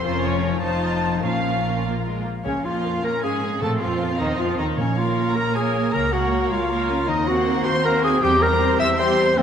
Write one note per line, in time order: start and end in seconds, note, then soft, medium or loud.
0.00 0.45 F3 soft
0.00 0.59 C#4 soft
0.00 0.54 F4 soft
0.00 0.64 A#4 soft
0.05 0.60 F1 medium
0.05 0.60 F2 soft
0.05 0.61 F3 medium
0.05 0.61 C#4 soft
0.05 0.61 F4 soft
0.05 0.61 A#4 soft
0.05 0.25 C5 medium
0.26 0.65 C#5 medium
0.46 4.36 F3 soft
0.51 1.19 D#4 soft
0.56 1.14 F4 soft
0.60 1.23 F1 soft
0.60 1.24 C5 soft
0.64 1.23 F2 soft
0.64 1.24 F3 soft
0.64 1.25 D#4 soft
0.64 1.23 F4 soft
0.64 1.25 C5 soft
0.64 1.23 A5 medium
1.06 2.38 A#2 soft
1.11 2.64 C#4 soft
1.15 4.75 F4 soft
1.20 2.83 A#4 soft
1.24 2.25 A#1 soft
1.24 2.25 A#2 soft
1.24 1.80 F3 soft
1.24 1.81 C#4 soft
1.24 2.23 F4 soft
1.24 2.23 A#4 soft
1.24 1.84 F5 medium
1.85 1.93 A#3 soft
2.05 2.25 G#3 soft
2.26 2.45 A#3 soft
2.45 2.52 C#2 soft
2.45 3.61 A#2 soft
2.45 2.53 C#3 medium
2.45 3.00 A#3 soft
2.45 2.53 C#4 medium
2.45 2.66 C#4 medium
2.45 2.63 C#5 soft
2.64 3.03 F2 soft
2.64 3.03 F3 soft
2.64 3.63 C#4 soft
2.64 3.03 F4 soft
2.64 3.04 F4 medium
2.64 3.03 F5 soft
2.84 3.41 A#4 soft
3.02 3.23 A#2 soft
3.02 3.11 A#3 medium
3.02 3.62 C#4 soft
3.02 3.22 A#4 soft
3.02 3.25 A#4 medium
3.02 3.63 C#5 soft
3.02 3.23 A#5 medium
3.22 3.62 G#2 soft
3.22 3.61 G#3 medium
3.22 3.60 G#4 soft
3.22 3.64 G#4 medium
3.22 7.10 F5 soft
3.22 3.61 G#5 soft
3.43 3.63 A#4 soft
3.60 3.81 A2 medium
3.60 4.16 A#2 soft
3.60 4.76 A#2 soft
3.60 3.80 A3 medium
3.60 4.75 C4 soft
3.60 3.80 A4 medium
3.60 3.81 A4 medium
3.60 3.70 A5 medium
3.80 4.20 F2 soft
3.80 4.19 F3 medium
3.80 4.79 C4 soft
3.80 4.18 F4 medium
3.80 4.19 F4 medium
3.80 4.19 F5 soft
4.00 4.56 A4 soft
4.18 4.39 D#2 soft
4.18 4.39 D#3 medium
4.18 4.38 D#4 medium
4.18 4.29 D#4 medium
4.18 4.79 C5 soft
4.18 4.39 D#5 medium
4.38 4.58 F2 soft
4.38 4.58 F3 medium
4.38 4.58 F4 soft
4.38 4.48 F4 medium
4.38 4.79 D#5 soft
4.38 4.58 F5 soft
4.57 4.78 D#2 medium
4.57 4.78 D#3 soft
4.57 4.77 D#4 medium
4.57 4.68 D#4 soft
4.57 4.79 A4 soft
4.57 4.66 D#5 soft
4.77 5.29 A#1 medium
4.77 5.95 A#2 soft
4.77 5.32 A#2 medium
4.77 6.47 A#3 medium
4.77 4.99 C#4 medium
4.77 4.96 C#5 medium
4.96 8.24 A#3 soft
4.96 5.53 A#3 soft
4.96 5.37 F4 medium
4.96 5.54 A#4 soft
4.96 5.54 C#5 soft
4.96 5.35 F5 medium
5.15 5.72 A#4 soft
5.34 5.87 A#1 soft
5.34 6.10 C#4 soft
5.34 5.55 A#4 medium
5.34 5.54 A#5 medium
5.54 5.92 A#3 soft
5.54 5.95 G#4 medium
5.54 5.92 A#4 soft
5.54 6.48 C#5 soft
5.54 5.92 C#5 soft
5.54 5.93 G#5 medium
5.73 6.30 A#4 soft
5.92 6.44 C#2 medium
5.92 7.10 C#3 soft
5.92 6.11 A#3 soft
5.92 6.12 A#4 soft
5.92 6.15 A#4 medium
5.92 6.11 C#5 soft
5.92 6.12 A#5 medium
6.11 6.69 A#3 soft
6.11 7.09 C#4 soft
6.11 6.52 F#4 medium
6.11 6.69 A#4 soft
6.11 6.69 C#5 soft
6.11 6.51 F#5 medium
6.31 6.87 A#4 soft
6.49 7.02 C#2 medium
6.49 6.70 G#3 medium
6.49 7.10 F4 medium
6.49 7.09 C#5 soft
6.49 7.07 F5 medium
6.69 6.89 A#3 medium
6.69 7.08 A#3 medium
6.69 7.08 A#4 soft
6.69 7.08 C#5 soft
6.69 9.43 A#5 soft
6.89 6.97 C#4 medium
6.89 7.45 A#4 soft
7.08 7.59 D#2 medium
7.08 8.24 D#3 medium
7.08 9.33 C4 medium
7.08 7.29 D#4 medium
7.08 7.27 D#5 medium
7.26 7.83 A#3 medium
7.26 8.40 C4 soft
7.26 7.82 F#4 soft
7.26 7.67 F#4 medium
7.26 7.82 C5 medium
7.26 7.65 F#5 medium
7.46 8.01 A#4 soft
7.65 8.16 D#2 medium
7.65 8.59 C5 soft
7.65 7.84 C5 medium
7.65 7.84 C6 medium
7.83 8.21 A#3 medium
7.83 8.21 F#4 soft
7.83 8.03 A#4 medium
7.83 8.21 C5 medium
7.83 8.24 F#5 soft
7.83 8.03 A#5 medium
8.03 8.24 G#4 medium
8.03 9.43 A#4 soft
8.03 8.22 G#5 medium
8.21 8.73 E2 medium
8.21 9.39 E3 medium
8.21 8.40 G3 medium
8.21 8.40 G4 medium
8.21 8.44 G4 loud
8.21 8.41 C5 soft
8.21 8.41 G5 medium
8.41 8.98 G3 medium
8.41 9.39 C4 soft
8.41 8.98 G4 medium
8.41 8.79 A#4 medium
8.41 8.98 C5 medium
8.41 8.79 A#5 medium
8.60 9.17 C5 soft
8.79 9.31 E2 medium
8.79 9.39 G4 soft
8.79 8.98 E5 medium
8.79 8.87 E6 medium
8.98 9.37 G3 medium
8.98 9.37 G4 medium
8.98 9.37 C5 medium
8.98 9.39 C5 medium
8.98 9.39 G5 medium
8.98 9.36 C6 medium
9.18 9.39 C5 medium
9.37 9.43 F2 medium
9.37 9.43 F3 medium
9.37 9.43 A#3 medium
9.37 9.43 C4 loud
9.37 9.43 F4 medium
9.37 9.43 C5 medium
9.37 9.43 C#5 medium